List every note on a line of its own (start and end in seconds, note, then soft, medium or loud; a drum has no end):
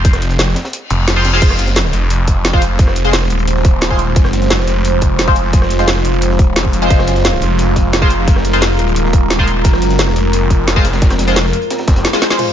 0.00 0.55 F1 loud
0.05 kick loud
0.05 closed hi-hat medium
0.13 cross-stick soft
0.13 snare soft
0.13 closed hi-hat soft
0.22 closed hi-hat medium
0.30 closed hi-hat soft
0.39 snare loud
0.39 closed hi-hat loud
0.39 open hi-hat medium
0.48 cross-stick soft
0.55 snare loud
0.55 closed hi-hat medium
0.65 snare loud
0.65 closed hi-hat medium
0.73 closed hi-hat loud
0.73 reverse cymbal medium
0.90 1.41 F1 loud
0.90 closed hi-hat medium
1.07 snare loud
1.07 closed hi-hat medium
1.07 closed hi-hat loud
1.16 1.30 G#3 medium
1.16 1.30 F4 medium
1.16 1.30 C5 medium
1.25 snare loud
1.25 closed hi-hat medium
1.33 2.51 G#3 loud
1.33 2.51 F4 medium
1.33 2.51 C5 loud
1.33 snare loud
1.33 closed hi-hat medium
1.42 1.58 F1 medium
1.42 12.35 G#3 medium
1.42 12.35 F4 medium
1.42 6.86 C5 medium
1.42 kick loud
1.42 closed hi-hat loud
1.42 closed hi-hat medium
1.42 crash medium
1.50 cross-stick soft
1.50 snare medium
1.59 1.92 F#1 loud
1.59 snare soft
1.59 closed hi-hat medium
1.67 snare medium
1.67 closed hi-hat soft
1.76 snare loud
1.76 closed hi-hat loud
1.85 cross-stick soft
1.85 snare medium
1.93 3.29 F1 loud
1.93 closed hi-hat medium
2.10 closed hi-hat loud
2.27 kick medium
2.27 closed hi-hat medium
2.45 snare loud
2.45 closed hi-hat loud
2.45 closed hi-hat medium
2.53 2.62 G#3 loud
2.53 2.62 F4 loud
2.53 2.62 C5 loud
2.53 kick loud
2.62 closed hi-hat medium
2.79 kick loud
2.79 closed hi-hat medium
2.88 cross-stick soft
2.88 snare soft
2.96 closed hi-hat medium
3.05 3.13 G#3 medium
3.05 3.13 F4 medium
3.05 3.13 C5 loud
3.05 closed hi-hat soft
3.13 snare loud
3.13 closed hi-hat loud
3.13 open hi-hat medium
3.22 cross-stick soft
3.30 4.15 D#1 loud
3.30 closed hi-hat medium
3.39 closed hi-hat soft
3.48 closed hi-hat medium
3.56 snare soft
3.65 kick loud
3.65 closed hi-hat medium
3.81 snare loud
3.81 closed hi-hat medium
3.90 3.99 G#3 medium
3.90 3.99 F4 medium
3.90 3.99 C5 loud
3.90 kick medium
3.99 closed hi-hat medium
4.16 4.32 F1 medium
4.16 kick loud
4.16 closed hi-hat medium
4.24 cross-stick medium
4.24 snare medium
4.33 4.66 F#1 loud
4.33 snare soft
4.33 closed hi-hat medium
4.42 snare soft
4.42 closed hi-hat soft
4.50 snare loud
4.50 closed hi-hat medium
4.59 cross-stick soft
4.59 snare medium
4.67 6.03 F1 loud
4.67 closed hi-hat medium
4.85 closed hi-hat medium
4.85 closed hi-hat loud
5.01 kick medium
5.01 closed hi-hat medium
5.19 snare loud
5.19 closed hi-hat loud
5.19 closed hi-hat medium
5.28 5.36 G#3 loud
5.28 5.36 F4 medium
5.28 5.36 C5 loud
5.28 kick loud
5.36 closed hi-hat medium
5.53 kick loud
5.53 closed hi-hat medium
5.62 cross-stick soft
5.62 snare soft
5.70 closed hi-hat medium
5.79 5.88 G#3 medium
5.79 5.88 F4 medium
5.79 5.88 C5 loud
5.79 closed hi-hat soft
5.88 snare loud
5.88 closed hi-hat medium
5.88 open hi-hat medium
5.96 cross-stick soft
6.05 6.55 F1 loud
6.05 closed hi-hat medium
6.13 closed hi-hat soft
6.22 closed hi-hat medium
6.22 closed hi-hat loud
6.30 snare soft
6.39 kick loud
6.39 closed hi-hat medium
6.56 6.89 F1 medium
6.56 snare loud
6.56 closed hi-hat medium
6.65 kick medium
6.73 closed hi-hat medium
6.82 8.00 G#3 loud
6.82 8.00 F4 medium
6.82 8.00 C5 loud
6.82 closed hi-hat soft
6.90 7.06 F1 loud
6.90 12.35 A#4 medium
6.90 kick loud
6.90 closed hi-hat medium
6.98 cross-stick soft
6.98 snare medium
7.07 7.41 F#1 loud
7.07 snare soft
7.07 closed hi-hat medium
7.16 snare medium
7.16 closed hi-hat soft
7.25 snare loud
7.25 closed hi-hat loud
7.25 closed hi-hat medium
7.33 cross-stick soft
7.33 snare medium
7.42 8.78 F1 loud
7.42 closed hi-hat medium
7.59 closed hi-hat loud
7.59 closed hi-hat medium
7.76 kick medium
7.76 closed hi-hat medium
7.93 snare loud
7.93 closed hi-hat medium
8.02 8.11 G#3 loud
8.02 8.11 F4 medium
8.02 8.11 C5 loud
8.02 kick loud
8.10 closed hi-hat medium
8.28 kick loud
8.28 closed hi-hat medium
8.28 closed hi-hat loud
8.36 cross-stick soft
8.36 snare medium
8.44 closed hi-hat medium
8.53 8.62 G#3 medium
8.53 8.62 F4 medium
8.53 8.62 C5 loud
8.53 closed hi-hat soft
8.61 snare loud
8.61 closed hi-hat loud
8.61 open hi-hat medium
8.70 cross-stick soft
8.79 9.63 D#1 loud
8.79 closed hi-hat medium
8.88 closed hi-hat soft
8.96 closed hi-hat medium
9.05 snare soft
9.13 kick loud
9.13 closed hi-hat medium
9.30 snare loud
9.30 closed hi-hat medium
9.39 9.48 G#3 medium
9.39 9.48 F4 medium
9.39 9.48 C5 medium
9.39 kick medium
9.48 closed hi-hat medium
9.64 9.81 F1 loud
9.64 kick loud
9.64 closed hi-hat loud
9.64 closed hi-hat medium
9.73 cross-stick soft
9.73 snare medium
9.82 10.15 F#1 loud
9.82 snare soft
9.82 closed hi-hat medium
9.90 snare soft
9.90 closed hi-hat soft
9.99 snare loud
9.99 closed hi-hat loud
9.99 closed hi-hat medium
10.08 cross-stick soft
10.08 snare medium
10.16 11.52 F1 loud
10.16 closed hi-hat medium
10.33 closed hi-hat loud
10.50 kick medium
10.50 closed hi-hat medium
10.68 snare loud
10.68 closed hi-hat loud
10.68 closed hi-hat medium
10.76 10.85 G#3 loud
10.76 10.85 F4 medium
10.76 10.85 C5 loud
10.76 kick loud
10.85 snare loud
10.85 closed hi-hat medium
10.93 snare loud
10.93 closed hi-hat medium
11.01 kick loud
11.01 snare loud
11.01 closed hi-hat medium
11.01 closed hi-hat loud
11.10 cross-stick soft
11.10 snare loud
11.10 closed hi-hat medium
11.10 closed hi-hat soft
11.19 snare loud
11.19 closed hi-hat medium
11.27 11.36 G#3 medium
11.27 11.36 F4 medium
11.27 11.36 C5 loud
11.27 snare loud
11.27 closed hi-hat soft
11.27 closed hi-hat medium
11.36 snare loud
11.36 closed hi-hat loud
11.36 open hi-hat medium
11.45 cross-stick soft
11.53 closed hi-hat medium
11.62 closed hi-hat soft
11.70 snare loud
11.70 closed hi-hat loud
11.70 closed hi-hat medium
11.78 snare loud
11.78 closed hi-hat medium
11.87 12.05 F1 loud
11.87 kick loud
11.87 snare loud
11.87 closed hi-hat medium
11.96 snare loud
11.96 closed hi-hat medium
12.04 snare loud
12.04 closed hi-hat loud
12.04 closed hi-hat medium
12.13 12.27 G#3 medium
12.13 12.27 F4 medium
12.13 12.27 C5 medium
12.13 snare loud
12.13 snare medium
12.13 closed hi-hat medium
12.21 snare loud
12.21 snare medium
12.21 closed hi-hat medium
12.30 12.53 G#3 loud
12.30 12.53 F4 medium
12.30 12.53 C5 loud
12.30 snare loud
12.30 snare medium
12.30 closed hi-hat medium
12.39 12.44 F4 medium
12.39 closed hi-hat medium
12.39 crash medium
12.39 sub drop medium